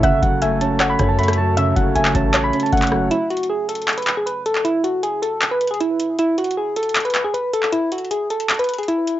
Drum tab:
HH |x-----------x-----------x-----------x-----------x-----------x-----------x--x--x--x--------------|x-----------x-----------x-----------x-----------x-----------x---x---x---x--x--x--x--------------|x-----------x---x---x---------------x---x---x---x--x--x--x--x-----------x-----------x-----------|x-----------x-----------x-----------x-----------x-----------x---x---x---x-----------x-----------|
CP |------------------------------------------------x-----------------------------------------------|------------------------------x-----------------x-----------------------------x-----------------|------------------------------------------------x-----------x-----------------------------x-----|------------------------------------------------x-----------------------------------------------|
SD |------------------------------------------------------------r-----------------r-----------------|------------------------------------------------------------------------------------r-----------|------------------------------------------------------------------------------------------------|------------------------------------------------------------------------------------------------|
BD |o-----------o-----------------------------------------------o-----------------------------------|------------o-----------------------o-----------------------------------o-----------------------|------------------------------------------------------------------------------------------------|------------------------------------------------------------------------------------------------|

HH |x-----------x---x---x---------------x---x---x---x--x--x--x--x-----------x-----------x-----------|x-----------x---x---x---x-----------x-----x-----x--x--x--x--x--x--x--x--x-----------x-----------|
CP |------------------------------------------------x-----------x-----------------------------x-----|------------------------------------------------x-----------------------------------------------|
SD |------------------------------------------------------------------------------------------------|------------------------------------------------------------------------------------------------|
BD |------------------------------------------------------------------------------------------------|------------------------------------------------------------------------------------------------|